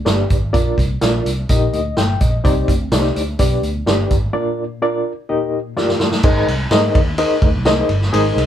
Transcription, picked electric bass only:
0.06 0.24 G1 medium
0.31 0.54 G#1 medium
0.54 0.72 A#1 medium
0.78 0.95 C2 medium
1.02 1.19 A#1 loud
1.26 1.43 C2 medium
1.49 1.67 A#1 medium
1.73 1.91 D2 medium
1.97 2.15 G1 medium
2.21 2.39 A#1 medium
2.45 2.62 C2 loud
2.68 2.86 D2 medium
2.92 3.09 C2 medium
3.16 3.33 D2 medium
3.40 3.57 B1 loud
3.62 3.80 D2 medium
3.87 4.04 G1 medium
4.11 4.28 G#1 medium
6.24 6.41 G#1 loud
6.48 6.65 C2 medium
6.71 6.88 G#2 loud
6.95 7.21 D#2 medium
7.42 7.56 D2 loud
7.54 7.80 C2 medium
7.90 8.07 G1 medium
8.13 8.30 G#1 loud
8.36 8.46 C2 medium

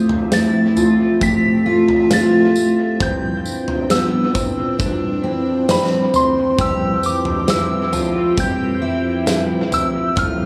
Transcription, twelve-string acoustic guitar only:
0.00 0.31 F4 medium
0.31 0.76 E4 medium
0.76 1.21 F4 medium
1.21 1.65 G4 medium
1.66 2.09 F4 medium
2.10 3.00 F4 medium
3.00 3.89 C4 medium
3.90 4.34 B3 medium
4.34 4.78 C4 medium
4.79 5.23 D4 medium
5.24 5.67 C4 medium
5.68 6.58 C4 medium
6.58 7.47 G4 medium
7.48 7.92 E4 medium
7.92 8.36 F4 medium
8.37 8.81 G4 medium
8.82 9.25 E4 medium
9.26 10.15 E4 medium
10.16 10.46 F4 loud

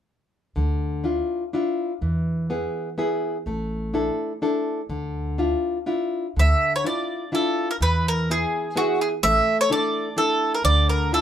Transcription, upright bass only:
0.56 1.20 D2 medium
2.01 2.64 E2 medium
3.46 4.08 A1 medium
4.89 5.53 D2 medium
6.37 6.52 D2 medium
7.81 8.42 E2 medium
9.23 9.39 A1 loud
10.64 11.21 D2 medium

